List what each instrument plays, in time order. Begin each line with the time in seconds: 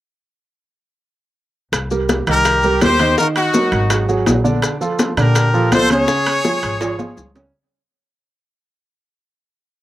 1.72 upright bass C2, high bongo, high conga, high timbale, maracas
1.91 grand piano G3 G4 A#4, high bongo, high conga, maracas
2.09 high bongo, high conga, high timbale, low timbale, maracas
2.27 upright bass C2, grand piano D#3 D#4 D#5, trumpet section G4 A#4, high bongo, high conga, high timbale, maracas
2.45 high bongo, high conga, high timbale, maracas
2.63 grand piano G3 G4 A#4, high conga, maracas
2.81 upright bass D#2, trumpet section G4 C5, high bongo, low bongo, high conga, high timbale, low timbale, maracas
2.99 grand piano D#3 D#4 D#5, high bongo, high conga, high timbale, maracas
3.18 grand piano D#3 D#4 D#5, trumpet section F#4 A#4, high bongo, high conga, maracas
3.36 trumpet section D#4 F#4, high bongo, high conga, high timbale, maracas
3.54 grand piano F#3 F#4 A#4, high bongo, high conga, low timbale, maracas
3.72 upright bass G#1, high bongo, high timbale, maracas
3.90 grand piano F#3 F#4 G#4, high bongo, high conga, high timbale, maracas
4.09 grand piano F#3 F#4 G#4, high conga, maracas
4.26 upright bass A#1, high bongo, low bongo, high conga, high timbale, low timbale, maracas
4.44 grand piano D3 D4 D5, high bongo, high conga, maracas
4.62 high bongo, high conga, high timbale, maracas
4.81 grand piano F3 F4 A4, high bongo, high conga, maracas
4.99 high bongo, high conga, high timbale, low timbale, maracas
5.17 upright bass A#2, grand piano D3 D4 D5, trumpet section G4 A#4, high bongo, high conga, high timbale, maracas
5.35 high bongo, high conga, high timbale, maracas
5.54 grand piano F3 F4 A4, high conga, maracas
5.72 upright bass C#2, trumpet section A4 C5, high bongo, low bongo, high conga, high timbale, low timbale, maracas
5.90 grand piano C#3 C#4 C#5, trumpet section G#4 C#5, high bongo, high conga, high timbale, maracas
6.08 grand piano C#3 C#4, high bongo, high conga, maracas
6.26 high bongo, high conga, high timbale, maracas
6.45 grand piano F3 F4 G#4, high bongo, high conga, low timbale, maracas
6.63 upright bass G#1, high bongo, high timbale, maracas
6.81 grand piano F3 F4 G#4, high bongo, high conga, high timbale, maracas
6.98 grand piano F3 F4 G#4, high conga, low timbale, maracas
7.17 upright bass C#2, high bongo, low bongo, low conga, maracas
7.35 grand piano C#3 C#4 C#5, high bongo, low conga, low timbale, maracas